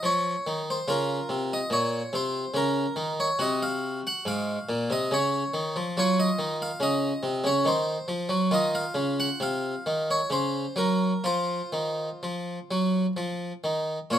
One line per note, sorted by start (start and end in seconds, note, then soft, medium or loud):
0.03 0.34 F3 medium
0.03 0.59 C#5 medium
0.47 0.77 D#3 medium
0.70 0.90 C5 medium
0.88 1.18 C#3 medium
0.88 3.35 F4 soft
0.88 1.52 A#4 medium
1.29 1.59 C3 medium
1.53 1.73 D#5 medium
1.70 2.00 A#2 medium
1.70 2.13 C#5 medium
2.13 2.43 C3 medium
2.13 2.56 C5 medium
2.54 2.85 C#3 medium
2.54 3.10 A#4 loud
2.96 3.27 D#3 medium
3.20 3.40 C#5 medium
3.39 4.01 C3 medium
3.39 5.07 F#4 soft
3.39 3.62 D#5 loud
3.63 3.99 F5 loud
4.07 4.27 F#5 medium
4.25 4.56 G#2 medium
4.25 4.91 F5 medium
4.69 4.89 A#2 medium
4.90 5.10 C3 medium
4.90 5.13 D#5 loud
5.11 5.42 C#3 medium
5.11 5.85 C#5 medium
5.54 5.74 D#3 medium
5.76 5.96 F3 medium
5.97 6.27 F#3 medium
5.97 7.62 F4 soft
5.97 6.19 C#5 loud
6.20 6.55 D#5 loud
6.39 6.69 D#3 medium
6.62 6.82 F5 medium
6.80 7.11 C#3 medium
6.80 7.46 D#5 loud
7.23 7.43 C3 medium
7.44 7.64 C#3 medium
7.44 7.67 C#5 medium
7.65 7.96 D#3 medium
7.65 8.40 C5 medium
8.08 8.29 F3 medium
8.29 8.50 F#3 medium
8.51 8.83 D#3 medium
8.51 10.27 F4 soft
8.51 8.75 D#5 medium
8.75 9.19 F5 loud
8.94 9.27 C#3 medium
9.20 9.42 F#5 medium
9.40 9.73 C3 medium
9.40 10.10 F5 medium
9.86 10.19 D#3 medium
10.11 10.33 C#5 medium
10.30 10.64 C#3 medium
10.30 10.78 C5 medium
10.76 11.11 F#3 medium
10.76 11.26 A#4 medium
11.24 11.60 F3 medium
11.24 13.13 F4 soft
11.24 13.29 C5 medium
11.73 12.08 D#3 medium
12.23 12.57 F3 medium
12.71 13.05 F#3 medium
13.17 13.51 F3 medium
13.64 13.97 D#3 medium
14.10 14.19 A#2 soft
14.10 14.19 F4 soft
14.10 14.19 C#5 medium